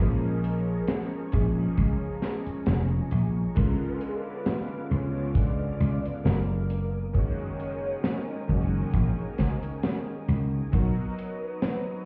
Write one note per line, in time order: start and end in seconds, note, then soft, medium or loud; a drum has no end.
0.00 0.78 A#1 medium
0.00 1.27 F3 medium
0.00 1.28 G#3 medium
0.00 1.28 A#3 medium
0.00 1.28 C#4 medium
0.00 1.29 G#4 medium
0.00 1.77 A#4 loud
0.00 3.53 G#5 medium
0.00 3.53 A#5 medium
0.00 3.53 C#6 medium
0.44 closed hi-hat medium
0.88 snare loud
0.88 closed hi-hat medium
1.31 1.65 A#1 medium
1.31 3.51 F3 medium
1.31 3.51 G#3 medium
1.31 3.52 A#3 medium
1.31 3.52 C#4 medium
1.31 3.53 G#4 medium
1.31 kick loud
1.31 closed hi-hat medium
1.78 1.95 C#2 medium
1.78 kick loud
1.78 closed hi-hat medium
2.22 snare medium
2.22 closed hi-hat medium
2.46 muted slap bass stroke soft
2.46 closed hi-hat medium
2.66 2.99 F1 medium
2.66 snare loud
2.66 closed hi-hat medium
3.11 3.44 A#1 medium
3.11 closed hi-hat medium
3.55 3.74 C#2 medium
3.55 4.85 D3 medium
3.55 4.86 G#3 medium
3.55 4.86 B3 medium
3.55 6.67 B3 medium
3.55 4.86 C#4 medium
3.55 4.87 F4 medium
3.55 3.90 A#4 medium
3.55 6.67 F5 medium
3.55 6.67 D6 medium
3.55 kick loud
3.55 closed hi-hat medium
3.89 3.98 B4 medium
3.97 4.07 A#4 medium
4.01 closed hi-hat medium
4.06 4.17 G#4 medium
4.16 4.25 A#4 medium
4.25 4.92 B4 loud
4.46 snare loud
4.46 closed hi-hat medium
4.90 5.70 C#2 medium
4.90 6.67 D3 medium
4.90 6.67 G#3 medium
4.90 6.68 B3 medium
4.90 6.68 C#4 medium
4.90 6.68 F4 medium
4.90 5.36 C#5 loud
4.90 closed hi-hat medium
5.35 6.24 D5 loud
5.35 kick loud
5.35 closed hi-hat medium
5.80 5.97 C#2 medium
5.80 closed hi-hat medium
6.05 muted slap bass stroke soft
6.05 closed hi-hat medium
6.24 7.94 F#1 medium
6.24 7.15 A#4 medium
6.24 snare loud
6.24 closed hi-hat medium
6.70 10.69 A#4 medium
6.70 10.69 G#5 medium
6.70 10.69 D#6 medium
6.70 closed hi-hat medium
7.13 8.43 D#3 medium
7.13 8.44 G#3 medium
7.13 8.44 A#3 medium
7.13 8.45 C#4 medium
7.13 8.45 F#4 medium
7.13 8.93 C#5 loud
7.13 kick loud
7.13 closed hi-hat medium
7.60 closed hi-hat medium
8.04 snare loud
8.04 closed hi-hat medium
8.47 8.81 F#1 medium
8.47 10.67 D#3 medium
8.47 10.68 G#3 medium
8.47 10.68 A#3 medium
8.47 10.68 C#4 medium
8.47 10.69 F#4 medium
8.47 kick loud
8.47 closed hi-hat medium
8.93 9.10 A#1 medium
8.93 kick loud
8.93 closed hi-hat medium
9.38 9.55 C#2 medium
9.38 kick medium
9.38 snare medium
9.38 closed hi-hat medium
9.62 closed hi-hat medium
9.83 snare loud
9.83 closed hi-hat medium
10.28 10.60 C#2 medium
10.28 closed hi-hat medium
10.71 10.90 B1 medium
10.71 12.02 F#3 medium
10.71 12.02 B3 medium
10.71 12.03 D#4 medium
10.71 12.03 F#4 medium
10.71 11.44 A#4 loud
10.71 12.05 A#5 medium
10.71 12.05 D#6 medium
10.71 kick loud
10.71 closed hi-hat medium
11.18 closed hi-hat medium
11.43 12.05 B4 loud
11.62 snare loud
11.62 closed hi-hat medium